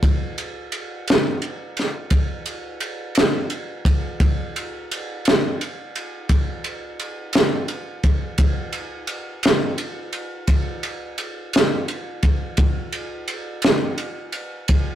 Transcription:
0.03 kick loud
0.03 ride medium
0.38 ride medium
0.72 ride medium
1.08 snare loud
1.08 ride medium
1.42 ride medium
1.77 snare soft
1.77 ride medium
2.10 kick medium
2.10 ride medium
2.46 ride medium
2.80 ride medium
3.15 snare loud
3.15 ride medium
3.50 ride medium
3.85 kick medium
3.85 ride medium
4.20 kick loud
4.20 ride medium
4.56 ride medium
4.91 ride medium
5.25 snare loud
5.25 ride medium
5.61 ride medium
5.96 ride medium
6.29 kick medium
6.29 ride medium
6.64 ride medium
7.00 ride medium
7.33 snare loud
7.33 ride medium
7.68 ride medium
8.04 kick medium
8.04 ride medium
8.38 kick medium
8.38 ride medium
8.73 ride medium
9.07 ride medium
9.43 snare loud
9.43 ride medium
9.78 ride medium
10.13 ride medium
10.47 kick medium
10.47 ride medium
10.83 ride medium
11.18 ride medium
11.53 snare loud
11.53 ride medium
11.88 ride medium
12.23 kick medium
12.23 ride medium
12.57 kick loud
12.57 ride medium
12.93 ride medium
13.28 ride medium
13.62 snare loud
13.62 ride medium
13.98 ride medium
14.32 ride medium
14.68 kick medium
14.68 ride medium

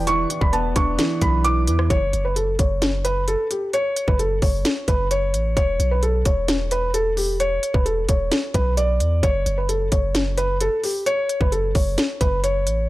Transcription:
0.00 0.26 E1 loud
0.00 0.07 E3 medium
0.00 1.87 E3 medium
0.00 0.52 B3 loud
0.00 0.76 D4 medium
0.00 1.87 E4 medium
0.00 1.87 G4 medium
0.00 1.87 D5 medium
0.07 0.28 E3 loud
0.07 0.39 C#6 loud
0.07 closed hi-hat medium
0.30 0.97 E3 medium
0.30 closed hi-hat medium
0.41 0.74 E1 loud
0.41 0.50 B5 medium
0.41 kick medium
0.52 1.67 B3 medium
0.52 0.71 A5 medium
0.52 closed hi-hat medium
0.76 0.98 E1 loud
0.76 1.90 D4 medium
0.76 1.19 C#6 medium
0.76 kick loud
0.76 cross-stick medium
0.76 closed hi-hat medium
0.98 1.20 E3 loud
0.98 snare loud
0.98 closed hi-hat medium
1.21 1.69 B1 loud
1.21 1.43 E3 medium
1.21 1.40 B5 medium
1.21 kick loud
1.21 closed hi-hat medium
1.44 1.66 E3 medium
1.44 1.88 D6 medium
1.44 closed hi-hat medium
1.67 1.89 E2 loud
1.67 1.91 E3 medium
1.67 closed hi-hat medium
1.79 cross-stick loud
1.90 2.12 F#1 loud
1.90 2.23 C#5 loud
1.90 kick loud
1.90 closed hi-hat medium
2.13 2.57 F#1 loud
2.13 closed hi-hat medium
2.25 2.34 B4 medium
2.36 2.54 A4 medium
2.36 closed hi-hat medium
2.59 3.36 F#1 loud
2.59 3.02 C#5 medium
2.59 kick medium
2.59 closed hi-hat medium
2.82 snare loud
2.82 closed hi-hat medium
3.05 3.23 B4 medium
3.05 closed hi-hat medium
3.28 3.46 A4 medium
3.28 closed hi-hat medium
3.51 3.69 G4 medium
3.51 closed hi-hat medium
3.73 4.06 C#5 loud
3.73 closed hi-hat medium
3.96 closed hi-hat medium
4.08 4.41 F#1 loud
4.08 4.17 B4 medium
4.08 kick medium
4.19 4.37 A4 medium
4.19 closed hi-hat medium
4.42 4.64 F#1 loud
4.42 4.85 C#5 medium
4.42 kick medium
4.42 open hi-hat medium
4.65 snare loud
4.65 closed hi-hat medium
4.88 5.35 F#1 loud
4.88 5.06 B4 medium
4.88 kick medium
4.88 closed hi-hat medium
5.11 5.54 C#5 medium
5.11 closed hi-hat medium
5.34 5.56 A1 loud
5.34 closed hi-hat medium
5.57 5.79 E1 loud
5.57 5.89 C#5 loud
5.57 kick loud
5.57 closed hi-hat medium
5.80 6.24 B1 loud
5.80 closed hi-hat medium
5.91 6.00 B4 medium
6.03 6.21 A4 medium
6.03 closed hi-hat medium
6.25 7.59 E1 loud
6.25 6.68 C#5 medium
6.25 kick loud
6.25 closed hi-hat medium
6.48 snare loud
6.48 closed hi-hat medium
6.71 6.90 B4 medium
6.71 closed hi-hat medium
6.94 7.12 A4 medium
6.94 closed hi-hat medium
7.17 7.35 G4 medium
7.17 open hi-hat medium
7.40 7.72 C#5 loud
7.40 closed hi-hat medium
7.63 closed hi-hat medium
7.74 8.07 E1 loud
7.74 7.83 B4 medium
7.74 kick medium
7.85 8.04 A4 medium
7.85 closed hi-hat medium
8.09 8.31 E1 loud
8.09 8.52 C#5 medium
8.09 kick medium
8.09 closed hi-hat medium
8.32 snare loud
8.32 closed hi-hat medium
8.54 9.02 B1 loud
8.54 8.73 B4 medium
8.54 kick medium
8.54 closed hi-hat medium
8.77 9.20 D5 medium
8.77 closed hi-hat medium
9.00 9.22 E2 medium
9.00 closed hi-hat medium
9.23 9.45 F#1 loud
9.23 9.55 C#5 loud
9.23 kick loud
9.23 closed hi-hat medium
9.46 9.90 F#1 loud
9.46 closed hi-hat medium
9.58 9.67 B4 medium
9.69 9.87 A4 medium
9.69 closed hi-hat medium
9.92 10.69 F#1 loud
9.92 10.35 C#5 medium
9.92 kick loud
9.92 closed hi-hat medium
10.15 snare loud
10.15 closed hi-hat medium
10.38 10.56 B4 medium
10.38 closed hi-hat medium
10.61 10.79 A4 medium
10.61 closed hi-hat medium
10.84 11.02 G4 medium
10.84 open hi-hat medium
11.06 11.39 C#5 loud
11.06 closed hi-hat medium
11.29 closed hi-hat medium
11.41 11.74 F#1 loud
11.41 11.50 B4 medium
11.41 kick medium
11.52 11.70 A4 medium
11.52 closed hi-hat medium
11.75 11.97 F#1 loud
11.75 12.18 C#5 medium
11.75 kick loud
11.75 open hi-hat medium
11.98 snare loud
11.98 closed hi-hat medium
12.21 12.68 F#1 loud
12.21 12.39 B4 medium
12.21 kick medium
12.21 closed hi-hat medium
12.44 12.87 C#5 medium
12.44 closed hi-hat medium
12.67 12.88 A1 medium
12.67 closed hi-hat medium

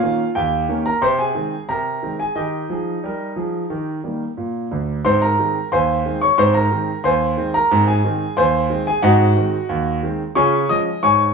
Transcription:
0.00 0.21 D#3 medium
0.00 0.21 A#3 medium
0.00 0.21 C#4 medium
0.00 0.32 F4 medium
0.00 0.25 F5 loud
0.35 0.64 D#2 medium
0.35 0.82 G4 medium
0.35 0.75 G5 medium
0.69 0.87 D#3 medium
0.69 0.87 A#3 soft
0.69 0.88 C#4 medium
0.86 1.01 A#4 medium
0.86 1.02 A#5 loud
1.02 1.30 C3 loud
1.02 1.18 C5 medium
1.02 1.18 C6 loud
1.19 1.66 G#4 medium
1.19 1.59 G#5 medium
1.35 1.53 D#3 medium
1.35 1.54 G#3 soft
1.35 1.54 C4 medium
1.69 1.97 C3 medium
1.69 2.16 A#4 medium
1.69 2.16 A#5 medium
2.03 2.21 D#3 soft
2.03 2.21 G#3 soft
2.03 2.21 C4 soft
2.20 2.36 G#4 medium
2.20 2.36 G#5 medium
2.35 2.62 D#3 medium
2.35 4.34 D#4 medium
2.35 2.64 G4 medium
2.35 3.97 D#5 medium
2.69 2.96 F3 medium
2.69 2.97 G#4 medium
3.04 3.30 G3 medium
3.04 3.31 A#4 medium
3.36 3.63 F3 medium
3.36 3.64 G#4 medium
3.70 3.99 D#3 medium
3.70 3.90 G4 soft
4.04 4.22 D#3 soft
4.04 4.22 G3 soft
4.04 4.23 A#3 soft
4.37 4.66 A#2 medium
4.71 4.98 D2 medium
4.71 4.98 D3 medium
5.05 5.33 G#2 loud
5.05 5.25 C4 medium
5.05 5.21 C5 medium
5.05 5.21 C6 loud
5.22 5.69 A#4 medium
5.22 5.69 A#5 loud
5.39 5.57 D#3 medium
5.39 5.58 G#3 medium
5.39 5.58 C4 medium
5.72 6.00 D#2 medium
5.72 6.19 C5 medium
5.72 6.19 G#5 medium
5.72 6.19 C6 loud
6.06 6.24 D#3 medium
6.06 6.24 G#3 medium
6.06 6.24 C4 medium
6.21 6.38 C#5 medium
6.21 6.38 C#6 loud
6.38 6.66 G#2 loud
6.38 6.58 C4 medium
6.38 6.54 C5 loud
6.38 6.55 C6 loud
6.54 7.01 A#4 medium
6.54 7.02 A#5 loud
6.71 6.90 D#3 medium
6.71 6.90 G#3 medium
6.71 6.90 C4 medium
7.04 7.32 D#2 medium
7.04 7.51 C5 medium
7.04 7.51 G#5 medium
7.04 7.51 C6 loud
7.37 7.56 D#3 medium
7.37 7.56 G#3 medium
7.37 7.56 C4 medium
7.54 7.86 A#4 medium
7.54 7.81 A#5 loud
7.71 7.99 G#2 loud
7.71 7.91 C4 medium
7.87 8.34 G#4 medium
7.87 8.35 G#5 loud
8.05 8.23 D#3 medium
8.05 8.23 G#3 medium
8.05 8.23 C4 medium
8.37 8.65 D#2 medium
8.37 8.84 C5 loud
8.37 8.84 G#5 medium
8.37 8.77 C6 loud
8.70 8.88 D#3 medium
8.70 8.89 G#3 medium
8.70 8.89 C4 medium
8.87 9.03 G#4 medium
8.87 9.04 G#5 loud
9.02 9.31 G#2 loud
9.02 9.23 C4 medium
9.02 9.99 F#4 medium
9.02 9.99 D#5 medium
9.02 9.82 F#5 loud
9.36 9.55 D#3 medium
9.36 9.55 G#3 medium
9.36 9.55 C4 medium
9.69 9.98 D#2 medium
10.03 10.21 D#3 medium
10.03 10.22 G#3 medium
10.03 10.22 C4 medium
10.35 10.64 C#3 loud
10.35 10.55 F4 medium
10.35 10.67 C#5 loud
10.35 10.67 G#5 loud
10.35 10.67 C#6 loud
10.69 10.87 F3 medium
10.69 10.88 G#3 medium
10.69 10.88 C#4 medium
10.69 11.01 D#5 medium
10.69 11.01 D#6 loud
11.03 11.31 G#2 medium
11.03 11.34 C#5 medium
11.03 11.34 G#5 medium
11.03 11.34 C#6 loud

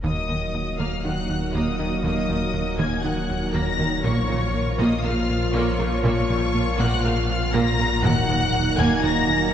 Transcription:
0.03 4.05 D#1 medium
0.03 0.12 D#2 medium
0.03 0.19 D#2 loud
0.03 0.12 D#2 medium
0.03 4.00 A#2 medium
0.03 4.00 F#3 medium
0.03 4.00 A#3 medium
0.03 0.28 A#3 medium
0.03 4.01 A#3 medium
0.03 4.00 D#4 medium
0.03 4.01 D#4 medium
0.03 4.00 F#4 medium
0.03 4.00 A#4 medium
0.03 0.75 D#5 medium
0.03 0.75 D#6 medium
0.29 0.37 D#2 soft
0.29 0.44 D#2 medium
0.29 0.37 D#2 medium
0.29 0.38 D#3 soft
0.54 0.69 D#2 medium
0.78 0.87 D#2 medium
0.78 0.95 D#2 medium
0.78 1.02 A#3 medium
0.78 1.04 F5 medium
0.78 1.04 F6 medium
1.03 1.12 D#2 medium
1.03 1.11 D#3 medium
1.03 1.20 D#3 medium
1.03 1.54 F#5 medium
1.03 1.53 F#6 medium
1.30 1.45 D#2 medium
1.53 1.62 D#2 medium
1.53 1.70 D#2 medium
1.53 1.77 A#3 medium
1.53 2.01 D#5 medium
1.53 2.03 D#6 medium
1.78 1.86 D#2 medium
1.78 1.88 D#2 medium
1.78 1.87 D#3 medium
1.78 1.94 D#3 medium
2.03 2.11 D#2 medium
2.03 2.19 D#2 medium
2.03 2.13 D#2 medium
2.03 2.27 A#3 medium
2.03 2.77 D#5 medium
2.03 2.78 D#6 medium
2.29 2.37 D#2 medium
2.29 2.44 D#2 medium
2.29 2.38 D#2 medium
2.29 2.37 D#3 medium
2.54 2.69 D#2 medium
2.78 2.86 D#2 medium
2.78 2.87 D#2 medium
2.78 2.94 D#2 loud
2.78 3.02 A#3 medium
2.78 3.04 G#5 medium
2.78 3.04 G#6 medium
3.03 3.11 D#2 medium
3.03 3.12 D#3 medium
3.03 3.19 D#3 medium
3.03 3.54 F#5 medium
3.03 3.54 F#6 medium
3.30 3.45 D#2 medium
3.53 3.61 D#2 medium
3.53 3.69 D#2 loud
3.53 3.62 D#2 medium
3.53 3.77 A#3 medium
3.53 4.04 A#5 medium
3.53 4.04 A#6 loud
3.78 3.87 D#2 medium
3.78 3.86 D#3 medium
3.78 3.94 D#3 medium
4.02 8.05 A#1 medium
4.02 4.13 A#1 loud
4.02 4.12 A#2 medium
4.02 4.19 A#2 loud
4.02 7.87 A#2 medium
4.02 8.04 F3 medium
4.02 7.87 F3 medium
4.02 8.00 A#3 medium
4.02 4.27 A#3 medium
4.02 8.00 A#3 medium
4.02 8.04 F4 medium
4.02 8.00 F4 medium
4.02 8.00 A#4 medium
4.02 4.77 C#5 loud
4.02 4.77 C#6 loud
4.28 4.37 A#1 medium
4.28 4.37 A#2 medium
4.28 4.44 A#2 medium
4.28 4.36 C#3 medium
4.54 4.69 A#2 medium
4.78 4.87 A#1 loud
4.78 4.87 A#2 medium
4.78 4.94 A#2 loud
4.78 5.02 A#3 loud
4.78 5.04 D#5 medium
4.78 5.03 D#6 loud
5.03 5.12 A#1 medium
5.03 5.12 A#2 medium
5.03 5.12 C#3 medium
5.03 5.19 A#3 medium
5.03 5.54 F5 medium
5.03 5.54 F6 loud
5.30 5.45 A#2 medium
5.53 5.62 A#1 medium
5.53 5.62 A#2 medium
5.53 5.69 A#2 medium
5.53 5.78 A#3 loud
5.53 6.03 C#5 medium
5.53 6.02 C#6 medium
5.79 5.87 A#1 medium
5.79 5.88 A#2 medium
5.79 5.87 C#3 medium
5.79 5.94 A#3 medium
6.04 6.12 A#1 loud
6.04 6.12 A#2 loud
6.04 6.20 A#2 loud
6.04 6.28 A#3 medium
6.04 6.78 C#5 loud
6.04 6.77 C#6 loud
6.29 6.37 A#1 medium
6.29 6.38 A#2 medium
6.29 6.45 A#2 medium
6.29 6.38 C#3 medium
6.55 6.70 A#2 medium
6.79 6.87 A#1 loud
6.79 6.87 A#2 medium
6.79 6.94 A#2 loud
6.79 7.03 A#3 loud
6.79 7.05 F#5 loud
6.79 7.04 F#6 loud
7.03 7.11 A#1 medium
7.03 7.12 A#2 medium
7.03 7.13 C#3 medium
7.03 7.19 A#3 medium
7.03 7.53 F5 medium
7.03 7.54 F6 loud
7.30 7.45 A#2 medium
7.52 7.62 A#1 loud
7.52 7.62 A#2 loud
7.52 7.70 A#2 medium
7.52 7.78 A#3 medium
7.52 8.03 A#5 loud
7.52 8.04 A#6 loud
7.79 7.87 A#1 medium
7.79 7.87 A#2 medium
7.79 7.88 C#3 medium
7.79 7.94 A#3 medium
8.03 9.54 D#1 medium
8.03 8.11 D#2 loud
8.03 8.12 D#2 loud
8.03 8.19 D#2 loud
8.03 9.54 A#2 medium
8.03 9.54 F#3 medium
8.03 8.27 A#3 medium
8.03 9.54 A#3 loud
8.03 9.54 A#3 medium
8.03 9.54 D#4 loud
8.03 9.54 F#4 medium
8.03 9.54 A#4 loud
8.03 8.79 F#5 loud
8.03 8.77 F#6 loud
8.28 8.36 D#2 medium
8.28 8.37 D#2 medium
8.28 8.44 D#2 medium
8.28 8.37 D#3 medium
8.54 8.69 D#2 medium
8.77 8.86 D#2 loud
8.77 8.94 D#2 loud
8.77 8.87 D#2 loud
8.77 9.02 A#3 loud
8.77 9.03 G#5 loud
8.77 9.04 G#6 loud
9.03 9.12 D#2 medium
9.03 9.11 D#3 medium
9.03 9.19 D#3 medium
9.03 9.53 A#5 loud
9.03 9.53 A#6 loud
9.29 9.44 D#2 medium

